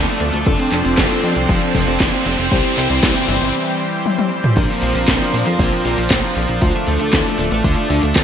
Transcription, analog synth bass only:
0.21 D2
0.34 D2
0.47 F1
0.72 F1
0.85 F1
0.98 F1
1.23 F2
1.36 C2
1.49 F1
1.75 F1
1.88 F1
2.00 F1
2.26 F1
2.39 F1
2.52 C2
2.77 C2
2.90 C2
3.03 C2
3.29 G1
3.42 G1
4.57 A#1
4.82 A#1
4.95 A#1
5.08 A#1
5.34 A#2
5.47 F2
5.59 A#1
5.85 A#1
5.98 A#1
6.11 A#1
6.36 A#1
6.49 A#1
6.62 D2
6.88 D2
7.00 D2
7.13 D2
7.39 D1
7.52 A1
7.64 D2
7.90 D2
8.03 D2
8.16 D2

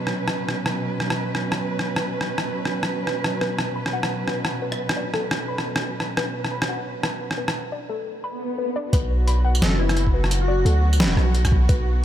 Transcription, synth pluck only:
3.41 B4
3.76 B5
3.93 F#5
4.27 B4
4.62 B4
4.97 D5
5.14 A4
5.48 B5
6.17 B4
6.51 B5
6.69 F#5
7.03 B4
7.38 B4
7.72 D5
7.89 A4
8.24 B5
8.58 B4
8.76 D5
8.93 B4
9.27 B5
9.45 F#5
9.79 B4
10.14 B4
10.48 D5
10.66 A4
11.00 B5
11.69 B4

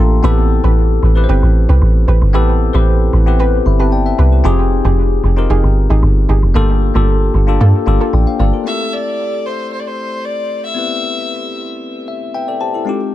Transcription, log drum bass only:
Already playing: A1
0.24 A1
0.64 A1
1.03 A1
1.29 G1
1.43 A1
1.69 C2
1.82 A1
2.08 A1
2.22 G1
2.34 A1
2.74 A1
3.13 A1
3.66 G1
4.19 C2
4.45 F1
4.85 F1
5.24 F1
5.50 F1
5.64 G1
5.90 G#1
6.03 G1
6.29 G1
6.43 F1
6.55 G1
6.95 G1
7.34 G1
7.61 G2
7.87 G1
8.13 A1
8.40 G1

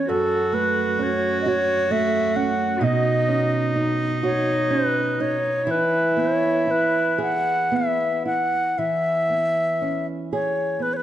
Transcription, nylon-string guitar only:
Already playing: E3 B3 C#4 G#4
0.09 F#2
0.52 A3
0.99 C#4
1.46 F#4
1.90 A3
2.36 C#4
2.81 B2
3.28 C#4
3.76 D#4
4.23 F#4
4.70 C#4
5.20 D#4
5.67 E3
6.17 B3
6.67 E4
7.18 G#4
7.71 B3
8.25 E4
8.79 E3
9.30 B3
9.81 C#4
10.33 G#4
10.79 B3

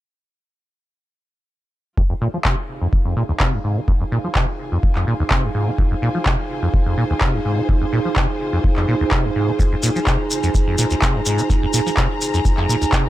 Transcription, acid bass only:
1.98 F2
2.10 F2
2.21 A#2
2.34 F3
2.45 C3
2.81 F2
3.05 F2
3.17 A#2
3.29 D#2
3.40 C3
3.53 G2
3.64 G#2
3.77 C3
3.88 F2
4.01 F2
4.12 A#2
4.24 F3
4.36 C3
4.72 F2
4.96 F2
5.07 A#2
5.20 D#2
5.31 C3
5.43 G2
5.55 G#2
5.67 C3
5.78 F2
5.91 F2
6.02 A#2
6.15 F3
6.26 C3
6.62 F2
6.86 F2
6.97 A#2
7.10 D#2
7.21 C3
7.34 G2
7.45 G#2
7.58 C3
7.69 F2
7.82 F2
7.93 A#2
8.05 F3
8.17 C3
8.53 F2
8.77 F2
8.88 A#2
9.01 D#2
9.12 C3
9.24 G2
9.36 G#2
9.48 C3
9.59 F2
9.72 F2
9.83 A#2
9.96 F3
10.07 C3
10.43 F2
10.67 F2
10.78 A#2
10.91 D#2
11.02 C3
11.15 G2
11.26 G#2
11.39 C3
11.50 F2
11.63 F2
11.74 A#2
11.86 F3
11.98 C3
12.34 F2
12.58 F2
12.69 A#2
12.82 D#2
12.93 C3
13.05 G2

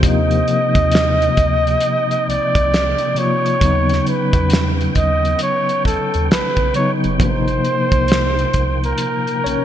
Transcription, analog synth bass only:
0.04 D#2
0.76 D#2
1.38 D2
2.28 C2
2.56 C2
3.62 D#2
4.34 E2
4.97 D#2
5.86 D#2
6.15 D#2
6.32 B1
6.58 B1
7.05 F#1
7.20 G#1
7.92 C2
8.55 C2
9.46 A#1

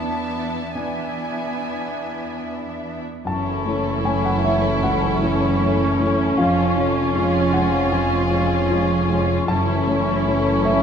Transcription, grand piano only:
Already playing: E2
0.75 B3 E4 D5
3.25 F#2 A5
3.65 A3 E4 C#5
4.04 A3 E4 C#5 G#5
4.25 F#5
4.43 A3 E4 C#5 E5
4.82 C#2 F#5
5.21 A3 E4 C#5
5.60 A3 E4 C#5
6.00 A3 E4 C#5
6.37 F2 F5
6.76 F3 F4 C#5
7.15 G#3 F4 C#5
7.53 F3 G#3 C#5 F#5
7.92 F2 G#5
8.31 G#3 F4 C#5
8.71 G#3 F4 C#5
9.09 G#3 F4 C#5
9.48 F#2 A5
9.87 A3 E4 C#5
10.26 A3 E4 C#5
10.65 A3 E4 C#5 E5

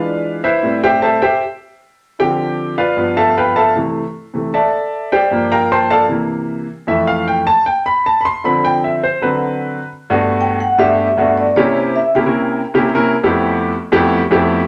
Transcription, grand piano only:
Already playing: E3 G#3 D4 F4 B4 D5 F5
0.44 E4 B4 C5 E5
0.63 A2 G3 C4
0.84 G4 C5 E5 G5
1.02 A4 C5 E5 A5
1.22 G4 C5 E5 G5
2.19 D3 F3 C4 G4 G5
2.78 F4 B4 D5 F5
2.97 G2 F3 B3
3.17 A4 E5 F5 A5
3.37 B4 F5 G5 B5
3.56 A4 E5 F5 A5
3.75 C3 E3 A3
4.34 C3 E3 A3
4.54 A4 D5 E5 A5
5.12 G4 C5 D5 G5
5.31 G2 F3 A#3
5.52 A#4 F5 G5 A#5
5.72 C5 G5 A5 C6
5.90 A4 D5 F5 A5
6.09 C3 E3 A#3
6.87 F2 E3 A3 E5
7.07 F5
7.28 G5
7.47 A5
7.66 G5
7.86 B5
8.06 A5
8.21 B5
8.25 C6
8.44 D3 F3 C4 B5
8.65 G5
8.84 E5
9.03 C5
9.22 D3 F#3 C4 B4
10.10 G2 A3 B3 D4 F#4
10.78 G2 A3 B3 D4 G4
11.17 G2 A3 B3 D4 F#4
11.56 C3 A#3 C#4 E4 G4
12.15 C3 A#3 C#4 E4 G4
12.25 C3 A#3 C#4 E4 A#4
12.74 C3 A#3 C#4 E4 G4
12.94 C3 A#3 C#4 E4 A#4
13.23 F2 A3 B3 C4 E4 G4
13.92 F2 A3 B3 C4 E4 G4
14.31 F2 A3 B3 C4 E4 G4

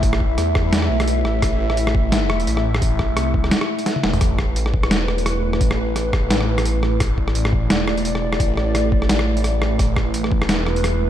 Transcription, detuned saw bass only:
Already playing: A1
0.38 E2
0.90 B1
1.25 A1
1.42 A1
2.47 A1
3.17 C2
4.04 E1
4.22 A1
4.91 E1
5.61 A1
6.31 A1
7.00 A1
7.70 E1
8.40 A1
9.09 A1
9.79 A1
10.49 E1

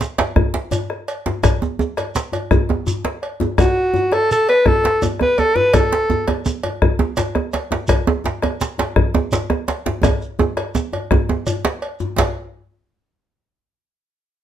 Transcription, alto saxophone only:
3.60 F#4
4.13 A4
4.32 A4
4.49 B4
4.67 A4
5.22 B4
5.39 A4
5.56 B4
5.74 A4

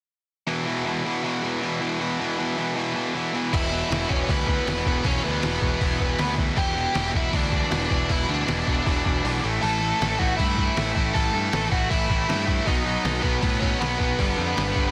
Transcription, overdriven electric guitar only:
0.47 E2 B2 E3
0.66 E2 B2 E3
0.86 E2 B2 E3
1.05 E2 B2 E3
1.24 E2 B2 E3
1.43 E2 B2 E3
1.61 E2 B2 E3
1.81 E2 B2 E3
2.00 E2 B2 E3
2.20 E2 B2 E3
2.38 E2 B2 E3
2.57 E2 B2 E3
2.76 E2 B2 E3
2.95 E2 B2 E3
3.15 E2 B2 E3
3.33 E2 B2 E3
3.52 E2 B2 E3
3.71 E2 B2 E3
3.89 E2 B2 E3
4.09 E2 B2 E3
4.28 E2 B2 E3
4.48 E2 B2 E3
4.67 E2 B2 E3
4.86 E2 B2 E3
5.05 E2 B2 E3
5.24 E2 B2 E3
5.43 E2 B2 E3
5.62 E2 B2 E3
5.81 E2 B2 E3
6.00 E2 B2 E3
6.18 E2 B2 E3
6.38 E2 B2 E3
6.56 E2 B2 E3
6.76 E2 B2 E3
6.95 E2 B2 E3
7.13 E2 B2 E3
7.32 E2 B2 E3
7.51 E2 B2 E3
7.70 E2 B2 E3
7.89 E2 B2 E3
8.08 E2 B2 E3
8.27 E2 B2 E3
8.47 E2 B2 E3
8.66 E2 B2 E3
8.85 E2 B2 E3
9.04 E2 B2 E3
9.24 E2 B2 E3
9.43 A2 E3 A3
9.62 A2 E3 A3
9.80 A2 E3 A3
10.00 A2 E3 A3
10.20 A2 E3 A3
10.38 A2 E3 A3
10.56 A2 E3 A3
10.75 A2 E3 A3
10.95 A2 E3 A3
11.15 A2 E3 A3
11.34 A2 E3 A3
11.53 A2 E3 A3
11.72 A2 E3 A3
11.90 A2 E3 A3
12.09 A2 E3 A3
12.28 A2 E3 A3
12.47 A2 E3 A3
12.66 B2 F#3 B3
12.84 B2 F#3 B3
13.04 B2 F#3 B3
13.22 B2 F#3 B3
13.42 B2 F#3 B3
13.61 B2 F#3 B3
13.80 B2 F#3 B3
13.99 B2 F#3 B3
14.19 G2 D3 G3
14.37 G2 D3 G3
14.56 G2 D3 G3
14.75 G2 D3 G3

